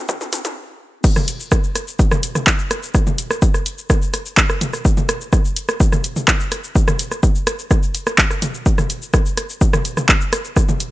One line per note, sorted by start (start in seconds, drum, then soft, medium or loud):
0.09 kick loud
0.09 mid tom loud
0.09 shaker medium
0.21 mid tom medium
0.21 shaker soft
0.33 closed hi-hat loud
0.33 mid tom loud
0.33 shaker medium
0.45 closed hi-hat medium
0.45 mid tom loud
0.45 shaker soft
1.04 kick loud
1.04 crash loud
1.04 shaker medium
1.16 cross-stick medium
1.16 mid tom medium
1.16 shaker soft
1.28 closed hi-hat loud
1.28 shaker medium
1.40 shaker soft
1.52 kick loud
1.52 cross-stick medium
1.52 shaker medium
1.64 shaker soft
1.75 cross-stick soft
1.75 closed hi-hat loud
1.75 shaker medium
1.88 shaker soft
1.99 kick loud
1.99 shaker medium
2.12 cross-stick medium
2.12 mid tom medium
2.12 shaker soft
2.23 closed hi-hat loud
2.23 shaker medium
2.35 cross-stick medium
2.35 mid tom medium
2.35 shaker soft
2.47 kick loud
2.47 clap loud
2.47 shaker medium
2.59 shaker soft
2.71 cross-stick medium
2.71 closed hi-hat loud
2.71 shaker medium
2.83 shaker soft
2.95 kick loud
2.95 cross-stick medium
2.95 shaker medium
3.07 mid tom medium
3.07 shaker soft
3.18 closed hi-hat loud
3.18 shaker medium
3.31 cross-stick medium
3.31 shaker soft
3.42 kick loud
3.42 shaker medium
3.54 cross-stick medium
3.54 shaker soft
3.66 closed hi-hat loud
3.66 shaker medium
3.78 shaker soft
3.90 kick loud
3.90 cross-stick medium
3.90 shaker medium
4.02 shaker soft
4.14 cross-stick soft
4.14 closed hi-hat loud
4.14 shaker medium
4.26 shaker soft
4.37 kick loud
4.37 clap loud
4.37 shaker medium
4.50 cross-stick medium
4.50 shaker soft
4.61 closed hi-hat loud
4.61 mid tom medium
4.61 shaker medium
4.73 cross-stick medium
4.73 shaker soft
4.85 kick loud
4.85 shaker medium
4.97 mid tom medium
4.97 shaker soft
5.09 cross-stick medium
5.09 closed hi-hat loud
5.09 shaker medium
5.21 shaker soft
5.33 kick loud
5.33 cross-stick medium
5.33 shaker medium
5.45 shaker soft
5.56 closed hi-hat loud
5.56 shaker medium
5.69 cross-stick medium
5.69 shaker soft
5.80 kick loud
5.80 shaker medium
5.92 cross-stick medium
5.92 mid tom medium
5.92 shaker soft
6.04 closed hi-hat loud
6.04 shaker medium
6.16 mid tom medium
6.16 shaker soft
6.28 kick loud
6.28 cross-stick medium
6.28 clap loud
6.28 shaker medium
6.40 shaker soft
6.52 cross-stick medium
6.52 closed hi-hat loud
6.52 shaker medium
6.64 shaker soft
6.76 kick loud
6.76 shaker medium
6.88 cross-stick medium
6.88 mid tom medium
6.88 shaker soft
6.99 closed hi-hat loud
6.99 shaker medium
7.12 cross-stick medium
7.12 shaker soft
7.23 kick loud
7.23 shaker medium
7.35 shaker soft
7.47 cross-stick medium
7.47 closed hi-hat loud
7.47 shaker medium
7.59 shaker soft
7.71 kick loud
7.71 cross-stick medium
7.71 shaker medium
7.83 shaker soft
7.95 closed hi-hat loud
7.95 shaker medium
8.07 cross-stick medium
8.07 shaker soft
8.18 kick loud
8.18 clap loud
8.18 shaker medium
8.31 cross-stick medium
8.31 shaker soft
8.42 closed hi-hat loud
8.42 mid tom medium
8.42 shaker medium
8.54 shaker soft
8.66 kick loud
8.66 shaker medium
8.78 cross-stick medium
8.78 mid tom loud
8.78 shaker soft
8.90 closed hi-hat loud
8.90 shaker medium
9.02 shaker soft
9.14 kick loud
9.14 cross-stick medium
9.14 shaker medium
9.26 shaker soft
9.37 cross-stick medium
9.37 closed hi-hat loud
9.37 shaker medium
9.50 shaker soft
9.61 kick loud
9.61 shaker medium
9.73 cross-stick medium
9.73 mid tom loud
9.73 shaker soft
9.85 closed hi-hat loud
9.85 shaker medium
9.97 cross-stick medium
9.97 mid tom medium
9.97 shaker soft
10.09 kick loud
10.09 clap loud
10.09 shaker medium
10.21 shaker soft
10.33 cross-stick medium
10.33 closed hi-hat loud
10.33 shaker medium
10.45 shaker soft
10.56 kick loud
10.56 cross-stick medium
10.56 shaker medium
10.69 mid tom loud
10.69 shaker soft
10.80 closed hi-hat loud
10.80 shaker medium